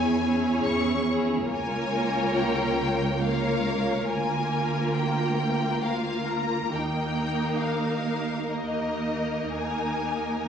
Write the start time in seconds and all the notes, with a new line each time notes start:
Already playing: E2 C#4 E4 G#4 C#5 G#5
0.23 C#4 E4 G#4 C#5
0.65 E2 C#6
1.08 C#4 E4 G#4 C#5
1.48 C#2 A#3 F4 A#4 C#5 G#5
2.34 G5
3.22 A#3 F4 A#4 C#5 F5
4.08 D2 A#3 F4 A#4 G#5
4.95 G5
5.82 A#3 F4 A#4 F5
6.28 A#5
6.71 D#2 A#3 D#4 A#4 G5
7.60 F5
8.50 A#3 D#4 A#4 D#5
9.54 D#2 G#5